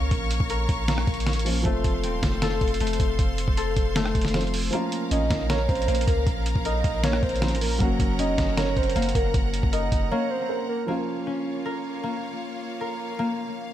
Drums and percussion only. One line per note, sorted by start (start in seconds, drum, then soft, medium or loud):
0.11 kick loud
0.11 closed hi-hat medium
0.31 closed hi-hat medium
0.40 kick loud
0.50 closed hi-hat medium
0.69 kick loud
0.69 closed hi-hat medium
0.88 snare loud
0.88 closed hi-hat medium
0.98 cross-stick loud
1.07 kick medium
1.07 closed hi-hat soft
1.14 closed hi-hat soft
1.20 closed hi-hat medium
1.27 snare loud
1.27 closed hi-hat medium
1.33 closed hi-hat medium
1.39 closed hi-hat medium
1.46 open hi-hat medium
1.65 kick loud
1.65 closed hi-hat medium
1.84 kick loud
1.84 closed hi-hat medium
2.04 closed hi-hat medium
2.23 kick loud
2.23 snare loud
2.23 closed hi-hat medium
2.42 snare loud
2.42 closed hi-hat medium
2.61 kick medium
2.61 closed hi-hat soft
2.68 closed hi-hat soft
2.74 closed hi-hat medium
2.80 closed hi-hat medium
2.87 closed hi-hat medium
2.93 closed hi-hat medium
3.00 kick loud
3.00 closed hi-hat medium
3.19 kick loud
3.19 closed hi-hat medium
3.38 closed hi-hat medium
3.48 kick loud
3.57 closed hi-hat medium
3.76 kick loud
3.76 closed hi-hat medium
3.96 snare loud
3.96 closed hi-hat medium
4.05 cross-stick loud
4.15 kick medium
4.15 closed hi-hat medium
4.21 snare medium
4.21 closed hi-hat medium
4.28 closed hi-hat medium
4.34 snare loud
4.34 closed hi-hat medium
4.41 closed hi-hat soft
4.47 closed hi-hat soft
4.54 open hi-hat medium
4.73 closed hi-hat medium
4.92 closed hi-hat medium
5.11 closed hi-hat medium
5.30 kick loud
5.30 snare loud
5.30 closed hi-hat medium
5.50 snare loud
5.50 closed hi-hat medium
5.69 kick medium
5.69 closed hi-hat soft
5.75 closed hi-hat soft
5.82 closed hi-hat medium
5.88 closed hi-hat medium
5.95 closed hi-hat medium
6.01 closed hi-hat medium
6.07 kick loud
6.07 closed hi-hat medium
6.27 kick loud
6.27 closed hi-hat medium
6.46 closed hi-hat medium
6.56 kick loud
6.65 closed hi-hat medium
6.84 kick medium
6.84 closed hi-hat medium
7.04 snare loud
7.04 closed hi-hat medium
7.13 cross-stick loud
7.23 kick medium
7.23 closed hi-hat soft
7.29 closed hi-hat soft
7.36 closed hi-hat medium
7.42 snare loud
7.42 closed hi-hat medium
7.48 closed hi-hat medium
7.55 closed hi-hat medium
7.61 open hi-hat medium
7.80 kick loud
7.80 closed hi-hat medium
8.00 kick loud
8.00 closed hi-hat medium
8.19 closed hi-hat medium
8.38 kick loud
8.38 snare loud
8.38 closed hi-hat medium
8.57 snare loud
8.57 closed hi-hat medium
8.77 kick medium
8.77 closed hi-hat soft
8.83 closed hi-hat soft
8.90 closed hi-hat medium
8.96 closed hi-hat medium
9.02 closed hi-hat medium
9.09 closed hi-hat medium
9.15 kick loud
9.15 closed hi-hat medium
9.34 kick loud
9.34 closed hi-hat medium
9.54 closed hi-hat medium
9.63 kick loud
9.73 closed hi-hat medium
9.92 kick loud
9.92 closed hi-hat medium